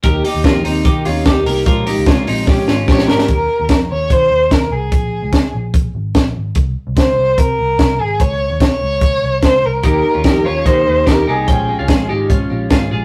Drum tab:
HH |x-o-x-o-x-o-x-o-|x-o-x-o---------|x---x---x---x---|x---x---x---x---|
SD |----o-------o---|----o---o-o-oooo|----o-------o---|----o-------o---|
BD |o---o---o---o---|o---o---o---o---|o---o---o---o---|o---o---o---o---|

HH |x---x---x---x---|x---x---x---x---|x---x---x---x---|x---x---x---x---|
SD |----o-------o---|----o-------o---|----o-------o---|----o-------o---|
BD |o---o---o---o---|o---o---o---o---|o---o---o---o---|o---o---o---o---|